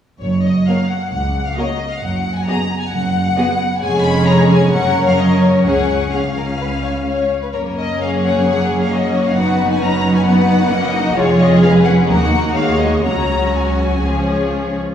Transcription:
0.20 0.59 F#1 soft
0.20 0.59 F#2 soft
0.20 0.42 C#5 soft
0.44 0.67 D#5 soft
0.66 0.76 A#3 soft
0.66 0.76 F#4 soft
0.66 0.76 A#4 soft
0.66 0.76 C#5 soft
0.66 0.89 F5 soft
0.89 1.10 F#5 soft
1.12 1.49 C#2 soft
1.12 1.50 C#2 soft
1.12 1.45 F#5 medium
1.45 1.57 F5 soft
1.56 1.65 A#3 soft
1.56 1.65 F#4 soft
1.56 1.66 A#4 soft
1.56 1.66 C#5 soft
1.56 1.91 D#5 soft
1.90 2.02 F5 medium
2.01 2.40 F#1 soft
2.01 2.40 F#2 soft
2.01 2.35 F#5 medium
2.35 2.47 G#5 soft
2.46 2.56 B3 soft
2.46 2.55 F#4 soft
2.46 2.56 G#4 soft
2.46 2.56 D#5 soft
2.46 2.79 A#5 medium
2.79 2.91 G#5 medium
2.90 3.29 F#1 soft
2.90 3.29 F#2 soft
2.90 3.80 F#5 medium
3.37 3.45 B3 soft
3.37 3.45 F#4 soft
3.37 3.45 G#4 soft
3.37 3.45 D#5 soft
3.81 4.69 F1 soft
3.81 4.69 F2 soft
3.81 4.69 G#3 soft
3.81 4.69 C#4 soft
3.81 4.69 G#4 medium
3.81 4.69 C#5 soft
3.81 4.04 G#5 medium
4.03 4.27 B5 medium
4.26 4.49 A#5 medium
4.49 4.72 G#5 medium
4.72 5.65 F#1 soft
4.72 5.66 F#2 medium
4.72 5.64 C#4 soft
4.72 5.66 A#4 soft
4.72 5.64 C#5 soft
4.72 5.06 F#5 medium
5.07 5.19 F5 medium
5.18 5.42 D#5 medium
5.41 5.65 C#5 medium
5.64 7.33 C#2 soft
5.64 7.34 C#2 soft
5.64 6.13 C#4 soft
5.64 6.12 G#4 soft
5.64 6.12 C#5 soft
5.64 6.12 F#5 medium
6.13 7.32 C#4 soft
6.13 6.21 G#4 soft
6.13 7.31 F5 soft
6.36 6.44 A#4 soft
6.60 6.68 B4 soft
6.84 6.92 C#5 soft
7.07 7.42 C#5 soft
7.42 7.47 B4 soft
7.53 9.33 F#1 soft
7.53 9.34 F#2 soft
7.53 7.98 A#3 soft
7.53 8.43 C#4 soft
7.53 7.97 A#4 soft
7.53 7.61 C#5 medium
7.78 8.01 D#5 medium
7.99 8.46 A#3 soft
7.99 8.91 G#4 soft
7.99 8.90 C#5 soft
7.99 8.09 F5 soft
8.23 8.44 F#5 soft
8.45 9.38 A#3 soft
8.45 9.38 C#4 soft
8.45 8.80 F#5 medium
8.81 8.92 F5 medium
8.91 10.24 F#4 soft
8.91 9.36 C#5 soft
8.91 9.26 D#5 medium
9.25 9.37 F5 medium
9.36 11.13 F#1 soft
9.36 11.13 F#2 soft
9.36 9.81 B3 soft
9.36 10.25 D#4 soft
9.36 10.71 B4 soft
9.36 9.70 F#5 medium
9.70 9.81 G#5 medium
9.81 10.26 C#4 soft
9.81 10.15 A#5 medium
10.15 10.26 G#5 medium
10.25 10.72 B3 soft
10.25 10.71 D#4 soft
10.25 11.14 F#4 soft
10.25 11.14 F#5 medium
10.71 11.17 A#3 soft
10.71 10.94 C#4 medium
10.71 11.16 D#5 medium
10.94 11.17 D#4 medium
11.16 12.07 F1 medium
11.16 12.07 F2 medium
11.16 12.07 G#3 soft
11.16 11.63 F4 medium
11.16 12.08 G#4 soft
11.16 11.39 C#5 medium
11.16 11.62 C#5 medium
11.39 11.62 D#5 medium
11.62 12.09 C#4 medium
11.62 12.09 B4 medium
11.62 11.70 F5 medium
11.84 11.92 F#5 medium
12.08 13.05 D#2 soft
12.08 12.31 A#3 medium
12.08 12.56 D#4 soft
12.08 13.04 F#4 soft
12.08 12.56 A#4 soft
12.08 12.55 F#5 medium
12.32 12.40 A#3 soft
12.56 13.04 G#3 soft
12.56 13.05 A#3 soft
12.56 13.03 C#5 soft
12.56 12.80 F5 medium
12.80 13.05 D#5 medium
13.04 14.01 C#2 soft
13.04 14.04 F#3 soft
13.04 14.02 C#4 soft
13.04 14.01 F#4 soft
13.04 14.01 C#5 soft
13.04 13.54 A#5 medium
13.54 14.52 G#5 soft
14.02 14.78 C#2 soft
14.02 14.80 F3 soft
14.02 14.78 C#4 soft
14.02 14.80 G#4 soft
14.02 14.78 C#5 soft

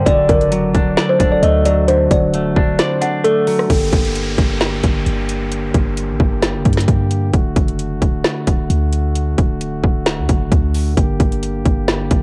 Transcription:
0.06 0.28 D1 loud
0.06 1.20 D3 medium
0.06 3.66 D3 medium
0.06 3.66 F#3 medium
0.06 3.66 F#4 medium
0.06 0.25 D5 loud
0.06 0.93 D5 loud
0.06 kick loud
0.06 closed hi-hat medium
0.29 0.73 F#1 loud
0.29 1.05 A#4 medium
0.29 kick loud
0.29 closed hi-hat medium
0.41 closed hi-hat soft
0.52 1.64 F#3 medium
0.52 closed hi-hat medium
0.75 0.96 D1 loud
0.75 1.18 D4 loud
0.75 kick loud
0.75 closed hi-hat medium
0.97 1.84 A4 medium
0.97 2.11 D5 medium
0.97 snare loud
1.09 1.28 C5 medium
1.19 1.42 D1 loud
1.19 2.33 D4 medium
1.19 kick medium
1.19 closed hi-hat medium
1.32 1.41 D5 medium
1.43 2.08 D2 loud
1.43 2.33 A3 loud
1.43 1.61 D#5 medium
1.43 closed hi-hat medium
1.65 2.79 F#3 medium
1.65 1.84 D5 medium
1.65 closed hi-hat medium
1.88 3.02 D3 medium
1.88 2.07 C5 medium
1.88 closed hi-hat medium
2.11 2.54 D1 loud
2.11 2.98 D5 medium
2.11 kick loud
2.11 closed hi-hat medium
2.34 3.23 A3 medium
2.34 closed hi-hat medium
2.56 2.79 D1 loud
2.56 3.00 D4 medium
2.56 kick loud
2.79 3.22 C5 medium
2.79 3.70 D5 medium
2.79 snare loud
2.79 closed hi-hat medium
3.01 3.70 D4 medium
3.01 3.20 F#5 medium
3.01 closed hi-hat medium
3.24 3.70 A3 loud
3.24 3.67 A4 medium
3.24 3.46 D5 medium
3.24 closed hi-hat medium
3.47 3.70 F#3 medium
3.47 3.69 A4 medium
3.47 open hi-hat medium
3.59 cross-stick medium
3.70 3.92 G1 loud
3.70 12.23 D3 medium
3.70 7.30 A#3 medium
3.70 7.30 G4 medium
3.70 kick loud
3.70 closed hi-hat medium
3.70 downlifter medium
3.93 4.36 G1 loud
3.93 kick loud
3.93 closed hi-hat medium
4.05 closed hi-hat soft
4.15 closed hi-hat medium
4.38 4.82 G1 loud
4.38 kick loud
4.38 closed hi-hat medium
4.61 snare loud
4.83 5.05 G1 loud
4.83 kick medium
4.83 closed hi-hat medium
5.06 5.72 G1 loud
5.06 closed hi-hat medium
5.29 closed hi-hat medium
5.52 closed hi-hat medium
5.74 6.11 G1 loud
5.74 kick loud
5.74 closed hi-hat medium
5.97 closed hi-hat medium
6.09 6.19 A1 loud
6.20 6.56 G1 loud
6.20 kick loud
6.42 snare loud
6.42 closed hi-hat medium
6.55 6.65 F#1 loud
6.65 6.87 G2 loud
6.65 kick medium
6.65 closed hi-hat medium
6.73 closed hi-hat medium
6.77 snare medium
6.77 closed hi-hat medium
6.88 7.32 G2 loud
6.88 kick medium
6.88 closed hi-hat medium
7.11 closed hi-hat medium
7.34 7.55 D1 loud
7.34 10.94 A3 medium
7.34 10.94 F#4 medium
7.34 kick loud
7.34 closed hi-hat medium
7.56 8.00 F#1 loud
7.56 kick loud
7.56 closed hi-hat medium
7.68 closed hi-hat soft
7.79 closed hi-hat medium
8.02 8.24 D1 loud
8.02 kick medium
8.02 closed hi-hat medium
8.24 snare loud
8.47 8.69 D1 loud
8.47 kick medium
8.47 closed hi-hat medium
8.70 9.35 D2 loud
8.70 closed hi-hat medium
8.93 closed hi-hat medium
9.15 closed hi-hat medium
9.38 9.82 D1 loud
9.38 kick loud
9.38 closed hi-hat medium
9.61 closed hi-hat medium
9.84 10.20 D1 loud
9.84 kick loud
10.06 snare loud
10.06 closed hi-hat medium
10.18 10.29 D2 loud
10.29 10.51 F#1 loud
10.29 kick medium
10.29 closed hi-hat medium
10.52 10.95 D2 loud
10.52 kick medium
10.52 closed hi-hat medium
10.74 open hi-hat medium
10.97 11.19 G1 loud
10.97 12.23 A#3 medium
10.97 12.23 G4 medium
10.97 kick loud
10.97 closed hi-hat medium
11.20 11.64 G1 loud
11.20 kick loud
11.20 closed hi-hat medium
11.32 closed hi-hat soft
11.43 closed hi-hat medium
11.65 12.09 G1 loud
11.65 kick medium
11.65 closed hi-hat medium
11.88 snare loud
12.11 12.23 G1 loud
12.11 kick medium
12.11 closed hi-hat medium

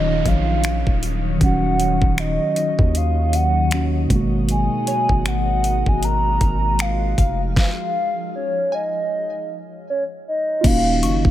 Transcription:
0.00 0.24 D#1 medium
0.00 1.35 D#3 medium
0.00 4.06 D#3 medium
0.00 1.37 F#3 medium
0.00 4.06 F#3 medium
0.00 1.38 C#4 medium
0.00 7.52 D#4 medium
0.00 1.39 F4 medium
0.00 4.06 C#5 medium
0.00 0.29 D#5 loud
0.00 1.38 F5 medium
0.00 downlifter medium
0.26 0.84 A#1 loud
0.26 1.04 F5 loud
0.26 kick medium
0.26 closed hi-hat medium
0.64 finger snap loud
0.64 closed hi-hat medium
0.87 1.39 D#1 loud
0.87 kick medium
1.03 closed hi-hat medium
1.38 1.99 D#1 loud
1.38 3.66 D#3 medium
1.38 3.67 F#3 medium
1.38 4.07 D#5 medium
1.38 kick loud
1.38 closed hi-hat medium
1.43 3.69 C#4 medium
1.43 3.70 F#4 medium
1.43 2.21 F#5 loud
1.80 closed hi-hat medium
2.02 2.39 D#1 loud
2.02 kick medium
2.18 2.98 D#5 loud
2.18 finger snap loud
2.18 closed hi-hat medium
2.56 closed hi-hat medium
2.79 4.06 D#2 loud
2.79 kick medium
2.95 3.37 F5 medium
2.95 closed hi-hat medium
3.33 4.11 F#5 loud
3.33 closed hi-hat medium
3.71 4.10 D#3 soft
3.71 4.10 F#3 soft
3.71 4.11 C#4 soft
3.71 finger snap loud
3.71 closed hi-hat medium
3.75 4.12 F#4 medium
4.07 4.69 G#1 loud
4.07 7.12 B2 medium
4.07 7.14 G#3 medium
4.07 7.15 G#3 medium
4.07 7.15 F#4 medium
4.07 7.15 A#4 medium
4.07 7.53 D#5 medium
4.07 kick loud
4.07 closed hi-hat medium
4.12 7.15 A#3 medium
4.12 7.16 F#4 medium
4.49 5.29 G#5 loud
4.49 closed hi-hat medium
4.87 7.53 C#5 medium
4.87 closed hi-hat medium
5.09 5.83 G#1 loud
5.09 kick medium
5.26 5.90 F#5 loud
5.26 finger snap loud
5.26 closed hi-hat medium
5.64 closed hi-hat medium
5.86 6.39 G#1 loud
5.86 6.06 G#5 loud
5.86 kick medium
6.03 6.83 A#5 loud
6.03 closed hi-hat medium
6.41 7.15 G#1 loud
6.41 kick medium
6.41 closed hi-hat medium
6.79 7.41 F5 loud
6.79 finger snap loud
6.79 closed hi-hat medium
7.18 7.55 F1 loud
7.18 10.18 F5 medium
7.18 kick loud
7.18 closed hi-hat medium
7.56 8.30 F5 loud
7.56 kick loud
7.56 snare medium
8.35 8.76 C#5 medium
8.72 9.88 D#5 medium
8.72 10.99 G#5 medium
9.90 10.04 C#5 medium
10.28 10.68 D#5 loud
10.61 11.05 D#1 loud
10.61 11.31 D#3 medium
10.61 11.31 F#3 medium
10.61 11.31 A#3 medium
10.61 11.31 C#4 medium
10.61 11.31 D#4 medium
10.61 11.31 F4 medium
10.61 kick loud
10.61 closed hi-hat medium
10.61 crash loud
10.65 11.31 C#4 medium
10.65 11.31 D#4 medium
10.65 11.31 F5 loud
11.03 11.24 F#1 loud
11.03 11.31 C#6 medium
11.03 closed hi-hat medium
11.25 11.31 D#1 loud
11.25 kick medium

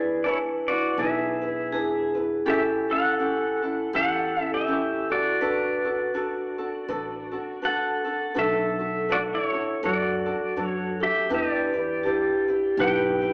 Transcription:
0.00 0.47 E2 medium
0.00 0.24 D4 soft
0.00 0.25 E4 soft
0.00 0.22 G#4 medium
0.00 0.25 B4 soft
0.00 1.69 B4 loud
0.00 0.27 D5 medium
0.24 0.69 D4 medium
0.24 0.68 E4 medium
0.24 0.38 E4 medium
0.24 0.68 G#4 medium
0.24 0.67 B4 medium
0.24 0.36 C#5 medium
0.68 0.97 D4 soft
0.68 0.98 E4 soft
0.68 0.97 F#4 medium
0.68 0.98 B4 soft
0.68 0.99 D5 medium
0.98 2.46 B1 medium
0.98 1.42 D4 medium
0.98 1.42 E4 medium
0.98 1.42 G#4 medium
0.98 2.13 G#4 medium
0.98 1.40 B4 medium
0.98 2.12 E5 medium
1.41 1.72 D4 soft
1.41 1.73 E4 soft
1.41 1.72 B4 medium
1.72 2.16 D4 medium
1.72 2.15 E4 medium
1.72 2.16 G#4 medium
1.72 2.48 G#4 medium
1.72 2.14 B4 medium
2.15 2.45 D4 soft
2.15 2.45 E4 soft
2.15 2.46 B4 soft
2.46 3.42 A1 medium
2.46 2.89 C#4 medium
2.46 2.89 E4 medium
2.46 2.89 G4 medium
2.46 2.60 G4 medium
2.46 5.37 A4 medium
2.46 2.88 A4 medium
2.50 2.61 E5 medium
2.89 3.19 C#4 soft
2.89 3.19 E4 soft
2.89 3.19 A4 soft
2.89 3.90 A4 medium
2.89 3.95 F#5 medium
3.19 3.63 C#4 medium
3.19 3.62 E4 medium
3.19 3.63 G4 medium
3.19 3.61 A4 medium
3.62 3.92 C#4 soft
3.62 3.93 E4 soft
3.62 3.93 A4 soft
3.93 5.41 E2 medium
3.93 4.37 C#4 medium
3.93 4.37 E4 medium
3.93 4.37 G4 medium
3.93 4.36 A4 medium
3.93 4.49 A4 medium
3.93 4.43 F#5 medium
4.37 4.67 C#4 soft
4.37 4.67 E4 soft
4.37 4.67 A4 soft
4.43 4.54 E5 medium
4.54 5.08 G4 medium
4.54 5.11 E5 medium
4.67 5.11 C#4 medium
4.67 5.10 E4 medium
4.67 5.11 G4 medium
4.67 5.08 A4 medium
5.10 5.41 E4 soft
5.10 8.02 F#4 medium
5.10 5.40 A4 medium
5.10 8.02 D5 medium
5.41 6.37 D2 medium
5.41 5.85 D4 medium
5.41 5.84 F#4 medium
5.41 5.83 A4 medium
5.41 5.84 B4 medium
5.41 6.11 B4 medium
5.85 6.13 D4 soft
5.85 6.14 F#4 soft
5.85 6.14 A4 soft
6.14 6.58 D4 medium
6.14 8.02 F#4 medium
6.14 6.58 F#4 medium
6.14 6.57 A4 medium
6.14 6.58 B4 medium
6.58 6.88 D4 soft
6.58 6.88 F#4 medium
6.58 6.88 A4 soft
6.88 7.36 A1 medium
6.88 7.32 D4 medium
6.88 7.32 F#4 medium
6.88 7.30 A4 medium
6.88 7.31 B4 medium
7.32 7.61 D4 soft
7.32 7.62 F#4 soft
7.32 7.61 A4 medium
7.62 8.06 D4 medium
7.62 8.05 F#4 medium
7.62 8.03 A4 medium
7.62 8.33 A4 medium
7.62 8.04 B4 medium
7.62 8.39 F#5 medium
8.05 8.34 D4 soft
8.05 8.35 F#4 soft
8.05 8.34 A4 medium
8.34 9.32 B1 medium
8.34 8.79 D4 medium
8.34 8.79 F#4 medium
8.34 8.78 A4 medium
8.34 11.27 A4 medium
8.34 9.07 A4 medium
8.34 8.78 B4 medium
8.39 9.13 E5 medium
8.79 9.08 D4 soft
8.79 9.09 F#4 soft
8.79 9.08 A4 soft
9.09 9.53 D4 medium
9.09 9.52 F#4 medium
9.09 9.17 F#4 medium
9.09 9.51 A4 medium
9.09 9.52 B4 medium
9.09 9.18 D5 medium
9.34 9.81 E4 medium
9.34 9.85 C#5 medium
9.52 9.82 D4 soft
9.52 9.82 F#4 soft
9.52 9.82 A4 soft
9.83 10.31 F#2 loud
9.83 10.27 D4 medium
9.83 10.25 F#4 medium
9.83 10.98 F#4 medium
9.83 10.25 A4 medium
9.83 10.25 B4 medium
9.83 10.65 D5 medium
10.26 10.56 D4 soft
10.26 10.56 F#4 soft
10.26 10.56 A4 medium
10.56 11.05 F#2 medium
10.56 11.01 D4 medium
10.56 11.01 F#4 medium
10.56 10.99 A4 medium
10.56 11.00 B4 medium
10.65 11.03 C#5 medium
11.00 11.29 D4 soft
11.00 11.30 G4 medium
11.00 11.30 A4 medium
11.00 11.33 E5 medium
11.30 12.26 E2 medium
11.30 11.74 D4 medium
11.30 11.74 E4 medium
11.30 11.74 G4 medium
11.30 12.06 B4 medium
11.30 11.72 B4 medium
11.34 12.76 G4 medium
11.34 12.81 D5 medium
11.74 12.04 D4 soft
11.74 12.04 E4 soft
11.74 12.04 B4 soft
12.03 12.48 D4 medium
12.03 12.48 E4 medium
12.03 13.33 G4 medium
12.03 12.48 G4 medium
12.03 12.47 B4 medium
12.48 12.78 D4 soft
12.48 12.78 E4 soft
12.48 12.78 B4 medium
12.77 13.25 B1 loud
12.77 13.22 D4 medium
12.77 13.21 E4 medium
12.77 13.22 G4 medium
12.77 13.20 B4 medium
12.77 13.33 B4 medium
12.77 13.33 G5 medium
13.21 13.33 D4 soft
13.21 13.33 E4 soft
13.21 13.33 B4 medium

